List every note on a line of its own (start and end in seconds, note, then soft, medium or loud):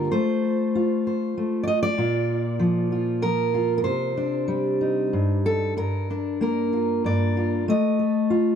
0.00 0.12 G2 medium
0.00 0.13 A#3 soft
0.00 0.75 F4 soft
0.00 0.11 A#4 medium
0.12 1.36 A3 medium
0.12 1.05 C5 medium
0.75 1.94 F4 medium
1.07 1.63 C5 soft
1.37 1.95 A3 medium
1.63 1.67 D5 medium
1.67 1.82 D#5 medium
1.83 3.22 D5 loud
1.98 3.82 A#2 medium
1.98 2.91 F4 medium
2.59 3.21 F3 medium
2.92 3.53 F4 soft
3.22 3.81 F3 medium
3.22 3.76 A#4 medium
3.54 3.82 F4 soft
3.78 3.83 A#4 medium
3.84 5.13 C3 medium
3.84 5.45 C5 medium
4.17 5.74 D4 soft
4.48 5.73 G3 medium
4.81 5.74 D#4 soft
5.13 5.75 G2 medium
5.46 5.77 A4 medium
5.77 7.03 G2 medium
5.77 6.41 A#4 medium
6.10 7.65 D4 soft
6.41 7.64 A#3 medium
6.41 7.05 A#4 medium
6.73 7.36 F4 soft
7.04 7.68 G2 medium
7.04 7.69 D5 medium
7.37 7.73 F4 soft
7.68 8.55 A3 medium
7.68 8.55 D#5 medium
7.99 8.55 A4 soft
8.30 8.55 F4 medium